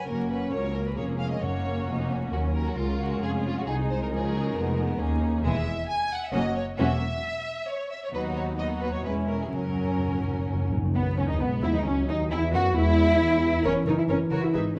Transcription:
0.06 double bass section F#1, cello section F#2, viola section A#3 C#4, violin section C#4 F#4 A#4
0.30 violin section B4
0.52 double bass section C#2, cello section C#2, viola section F#3, violin section A#3 A#4 C#5
0.75 violin section A#4
0.87 violin section B4
0.97 double bass section F1, cello section F2, viola section G#3 C#4, violin section G#4 C#5
1.18 violin section F5
1.30 violin section D#5
1.41 double bass section F#1, timpani F#2, cello section F#2, violin section A#3 F#4 C#5, viola section A#3 C#4
1.87 double bass section F1, cello section F2, violin section D#4
2.11 violin section C#4
2.32 double bass section D#2, cello section D#2, viola section F#3, violin section F#4 A#4
2.54 violin section A#4
2.67 violin section F#4
2.77 double bass section C#2, cello section C#2, viola section G#3 C#4, violin section F4
3.00 violin section F#4
3.21 double bass section F1, cello section F2, violin section F4 G#4
3.46 violin section F4
3.57 violin section F#4
3.66 double bass section C2, cello section C2, viola section G#3 D#4, violin section D#4 G#4
3.89 violin section C5
4.02 violin section A#4
4.11 double bass section C#2, cello section C#2, viola section F3, violin section C#4 G#4 A#4
4.33 viola section F#3
4.56 double bass section F1, cello section F2, viola section G#3, violin section B3
4.77 violin section B3
4.98 double bass section D#2, cello section D#2, viola section A#3 D#4, violin section C#4 G#4
5.43 double bass section E1, cello section E2, viola section E3 G#3, violin section G#3 G#4 E5
5.90 violin section G#5
6.13 violin section F#5
6.23 violin section E5
6.31 double bass section F#1, cello section F#2, viola section F#3 A#3, violin section C#4 F#4 D#5
6.56 violin section C#5
6.78 double bass section E1, cello section E2, viola section F#3 A#3, violin section C#4 F#4 E5
7.68 violin section C#5
7.91 violin section E5
8.04 violin section C#5
8.12 double bass section D#2, cello section D#2, viola section F#3 B3, violin section D#4 F#4 B4
8.37 violin section C#5
8.57 viola section F#3 B3, violin section D#4 F#4 D#5
8.81 violin section B4
8.93 violin section C#5
9.04 double bass section E1, cello section E2, viola section G#3 C#4, violin section C#4 E4 B4
9.27 violin section A#4
9.41 violin section G#4
9.51 double bass section F#1, timpani F#2, cello section F#2, viola section F#3 C#4, violin section C#4 A#4
9.68 timpani F#2
9.75 timpani F#2
9.83 timpani F#2
9.91 timpani F#2
9.99 timpani F#2
10.07 timpani F#2
10.14 timpani F#2
10.22 timpani F#2
10.31 timpani F#2
10.39 timpani F#2
10.47 timpani F#2
10.54 timpani F#2
10.61 timpani F#2
10.69 timpani F#2
10.77 timpani F#2
10.85 timpani F#2
10.94 double bass section B1, french horn section D#3, viola section B3, violin section B3, cello section B3
11.17 double bass section C#2, viola section C#4, cello section C#4, violin section C#4
11.28 double bass section D#2, viola section D#4, violin section D#4, cello section D#4
11.39 double bass section B1, french horn section G#3, violin section B3, viola section B3, cello section B3
11.62 double bass section E2, viola section E4, violin section E4, cello section E4
11.73 double bass section D#2, viola section D#4, violin section D#4, cello section D#4
11.84 double bass section C#2, french horn section F#3, violin section C#4, viola section C#4, cello section C#4
12.08 double bass section D#2, violin section D#4, viola section D#4, cello section D#4
12.30 double bass section E2, french horn section B3, violin section E4, viola section E4, cello section E4
12.53 double bass section F#2, violin section F#4, viola section F#4, cello section F#4
12.75 double bass section E2, french horn section G#3, violin section E4, viola section E4, cello section E4
13.20 french horn section E3
13.64 double bass section F#1, cello section C#4, violin section A#4 C#5, viola section A#4
13.86 double bass section F#1, cello section D#4, violin section A#4 C#5, viola section A#4
13.99 cello section E4
14.09 double bass section F#1, cello section C#4, violin section A#4 C#5, viola section A#4
14.31 double bass section F#1, cello section F#4, violin section A#4 C#5, viola section A#4
14.43 cello section E4
14.54 double bass section G#1, cello section D#4, viola section G#4, violin section B4 E5

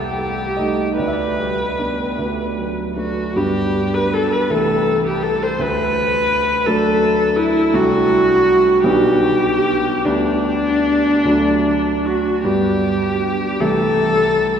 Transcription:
Already playing: grand piano C2 G5, viola G4
0.19 grand piano G3
0.57 grand piano A3 D#4 D#5
0.97 grand piano D2 D5, viola B4
1.08 grand piano E5
1.13 grand piano D5
1.40 grand piano G3
1.79 grand piano B3 D4
2.19 grand piano D2
2.58 grand piano F#3
2.96 grand piano A3 D4, viola F#4
3.35 grand piano G2 G3 B3 D4, viola G4
3.94 viola B4
4.13 viola A4
4.33 viola B4
4.50 grand piano C2 E3 A3 E4, viola A4
5.07 viola G4
5.22 viola A4
5.43 viola C5
5.59 grand piano D2, viola B4
6.66 grand piano F#3 A3 D4, viola A4
7.36 viola E4
7.74 grand piano C2 A3 D4, viola F#4
8.83 grand piano B1 G3 B3 D4, viola G4
10.05 grand piano D2 G3 B3 D4, viola D4
11.25 grand piano D2 F#3 A3 D4
12.06 viola F#4
12.44 grand piano G2 G3 B3 D4, viola G4
13.60 grand piano C2 E3 A3 E4, viola A4

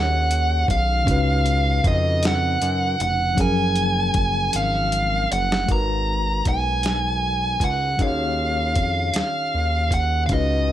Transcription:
Already playing: analog synth bass D#2, tine electric piano D#3 C#4 D#4 F#4 G#4 C#5, lead electric guitar F#5
0.31 closed hi-hat
0.68 analog synth bass B1, lead electric guitar F5, kick, closed hi-hat
1.04 analog synth bass C#2, tine electric piano C#3 C#4 D#4, kick, closed hi-hat
1.09 tine electric piano F#4 B4
1.46 closed hi-hat
1.84 analog synth bass F2, lead electric guitar D#5, kick, closed hi-hat
2.23 lead electric guitar F#5, snare, closed hi-hat
2.62 analog synth bass F#2, closed hi-hat
3.00 analog synth bass F1, lead electric guitar F#5, closed hi-hat
3.35 analog synth bass F#1, tine electric piano F3 F#3 C#4, kick, closed hi-hat
3.39 tine electric piano G#4 A#4, lead electric guitar G#5
3.75 closed hi-hat
4.14 analog synth bass F#1, kick, closed hi-hat
4.53 analog synth bass G#1, lead electric guitar F5, closed hi-hat
4.92 closed hi-hat
5.32 analog synth bass F#1, lead electric guitar F#5, closed hi-hat
5.52 snare
5.66 analog synth bass G#1, tine electric piano G#3 D#4 F#4, kick, closed hi-hat
5.71 tine electric piano A#4 B4, lead electric guitar A#5
6.45 analog synth bass B1, lead electric guitar G#5, kick, closed hi-hat
6.83 snare, closed hi-hat
7.60 analog synth bass C#2, lead electric guitar F#5, kick, closed hi-hat
7.97 analog synth bass D#2, tine electric piano D#3 C#4 D#4 F#4, kick, closed hi-hat
8.02 tine electric piano G#4 C#5, lead electric guitar F5
8.76 analog synth bass F2, kick, closed hi-hat
9.14 analog synth bass D#2, lead electric guitar F5, snare, closed hi-hat
9.54 analog synth bass D#2
9.91 lead electric guitar F#5, kick, closed hi-hat
10.26 tine electric piano C#3 C#4, lead electric guitar F5, kick, closed hi-hat
10.30 analog synth bass C#2, tine electric piano D#4 F#4 B4, lead electric guitar D#5

